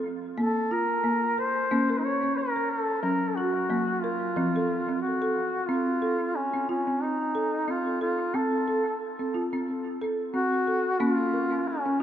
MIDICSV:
0, 0, Header, 1, 3, 480
1, 0, Start_track
1, 0, Tempo, 664452
1, 272, Time_signature, 4, 2, 24, 8
1, 8690, End_track
2, 0, Start_track
2, 0, Title_t, "Duduk"
2, 0, Program_c, 0, 69
2, 286, Note_on_c, 0, 69, 82
2, 528, Note_on_c, 0, 70, 86
2, 539, Note_off_c, 0, 69, 0
2, 1000, Note_off_c, 0, 70, 0
2, 1005, Note_on_c, 0, 72, 88
2, 1433, Note_on_c, 0, 63, 58
2, 1444, Note_off_c, 0, 72, 0
2, 1476, Note_on_c, 0, 73, 86
2, 1487, Note_off_c, 0, 63, 0
2, 1717, Note_on_c, 0, 70, 86
2, 1728, Note_off_c, 0, 73, 0
2, 1955, Note_on_c, 0, 69, 83
2, 1966, Note_off_c, 0, 70, 0
2, 2177, Note_off_c, 0, 69, 0
2, 2181, Note_on_c, 0, 70, 84
2, 2374, Note_on_c, 0, 69, 58
2, 2385, Note_off_c, 0, 70, 0
2, 2423, Note_on_c, 0, 66, 84
2, 2434, Note_off_c, 0, 69, 0
2, 2910, Note_on_c, 0, 65, 69
2, 2921, Note_off_c, 0, 66, 0
2, 3619, Note_off_c, 0, 65, 0
2, 3623, Note_on_c, 0, 66, 76
2, 4105, Note_on_c, 0, 65, 78
2, 4116, Note_off_c, 0, 66, 0
2, 4593, Note_on_c, 0, 61, 68
2, 4603, Note_off_c, 0, 65, 0
2, 4830, Note_off_c, 0, 61, 0
2, 4837, Note_on_c, 0, 61, 66
2, 5078, Note_on_c, 0, 63, 75
2, 5089, Note_off_c, 0, 61, 0
2, 5558, Note_on_c, 0, 65, 86
2, 5569, Note_off_c, 0, 63, 0
2, 5786, Note_off_c, 0, 65, 0
2, 5790, Note_on_c, 0, 65, 79
2, 6034, Note_on_c, 0, 69, 86
2, 6045, Note_off_c, 0, 65, 0
2, 6512, Note_off_c, 0, 69, 0
2, 7461, Note_on_c, 0, 66, 98
2, 7946, Note_on_c, 0, 65, 93
2, 7956, Note_off_c, 0, 66, 0
2, 8436, Note_on_c, 0, 61, 79
2, 8447, Note_off_c, 0, 65, 0
2, 8668, Note_off_c, 0, 61, 0
2, 8690, End_track
3, 0, Start_track
3, 0, Title_t, "Marimba"
3, 0, Program_c, 1, 12
3, 0, Note_on_c, 1, 69, 60
3, 166, Note_off_c, 1, 69, 0
3, 272, Note_on_c, 1, 58, 83
3, 515, Note_on_c, 1, 65, 62
3, 639, Note_off_c, 1, 58, 0
3, 751, Note_on_c, 1, 58, 72
3, 753, Note_off_c, 1, 65, 0
3, 998, Note_on_c, 1, 70, 65
3, 1118, Note_off_c, 1, 58, 0
3, 1234, Note_off_c, 1, 70, 0
3, 1236, Note_on_c, 1, 61, 73
3, 1237, Note_on_c, 1, 58, 80
3, 1367, Note_off_c, 1, 61, 0
3, 1369, Note_on_c, 1, 70, 64
3, 1606, Note_off_c, 1, 70, 0
3, 1610, Note_on_c, 1, 61, 62
3, 1847, Note_off_c, 1, 61, 0
3, 1850, Note_on_c, 1, 70, 56
3, 1969, Note_off_c, 1, 58, 0
3, 2087, Note_off_c, 1, 70, 0
3, 2187, Note_on_c, 1, 54, 80
3, 2191, Note_on_c, 1, 61, 74
3, 2430, Note_off_c, 1, 61, 0
3, 2439, Note_on_c, 1, 66, 62
3, 2555, Note_off_c, 1, 54, 0
3, 2670, Note_on_c, 1, 54, 68
3, 2673, Note_on_c, 1, 58, 67
3, 2674, Note_off_c, 1, 66, 0
3, 2911, Note_off_c, 1, 58, 0
3, 2918, Note_on_c, 1, 70, 64
3, 3149, Note_off_c, 1, 54, 0
3, 3153, Note_off_c, 1, 70, 0
3, 3153, Note_on_c, 1, 53, 80
3, 3157, Note_on_c, 1, 60, 74
3, 3287, Note_off_c, 1, 60, 0
3, 3293, Note_on_c, 1, 69, 63
3, 3528, Note_off_c, 1, 69, 0
3, 3530, Note_on_c, 1, 60, 60
3, 3766, Note_off_c, 1, 60, 0
3, 3769, Note_on_c, 1, 69, 61
3, 3886, Note_off_c, 1, 53, 0
3, 4006, Note_off_c, 1, 69, 0
3, 4109, Note_on_c, 1, 60, 79
3, 4349, Note_off_c, 1, 60, 0
3, 4349, Note_on_c, 1, 69, 64
3, 4589, Note_off_c, 1, 69, 0
3, 4721, Note_on_c, 1, 60, 60
3, 4828, Note_off_c, 1, 60, 0
3, 4833, Note_on_c, 1, 65, 59
3, 4965, Note_off_c, 1, 65, 0
3, 4966, Note_on_c, 1, 60, 61
3, 5204, Note_off_c, 1, 60, 0
3, 5309, Note_on_c, 1, 69, 66
3, 5547, Note_on_c, 1, 60, 60
3, 5549, Note_off_c, 1, 69, 0
3, 5788, Note_off_c, 1, 60, 0
3, 5788, Note_on_c, 1, 69, 59
3, 6026, Note_on_c, 1, 60, 80
3, 6028, Note_off_c, 1, 69, 0
3, 6267, Note_off_c, 1, 60, 0
3, 6268, Note_on_c, 1, 69, 63
3, 6508, Note_off_c, 1, 69, 0
3, 6642, Note_on_c, 1, 60, 57
3, 6748, Note_off_c, 1, 60, 0
3, 6750, Note_on_c, 1, 65, 62
3, 6883, Note_off_c, 1, 65, 0
3, 6886, Note_on_c, 1, 60, 63
3, 7125, Note_off_c, 1, 60, 0
3, 7235, Note_on_c, 1, 69, 65
3, 7468, Note_on_c, 1, 60, 63
3, 7472, Note_off_c, 1, 69, 0
3, 7709, Note_off_c, 1, 60, 0
3, 7711, Note_on_c, 1, 69, 64
3, 7946, Note_on_c, 1, 58, 87
3, 7950, Note_off_c, 1, 69, 0
3, 7950, Note_on_c, 1, 61, 79
3, 8189, Note_on_c, 1, 70, 58
3, 8190, Note_off_c, 1, 61, 0
3, 8430, Note_off_c, 1, 70, 0
3, 8565, Note_on_c, 1, 61, 66
3, 8671, Note_off_c, 1, 61, 0
3, 8683, Note_off_c, 1, 58, 0
3, 8690, End_track
0, 0, End_of_file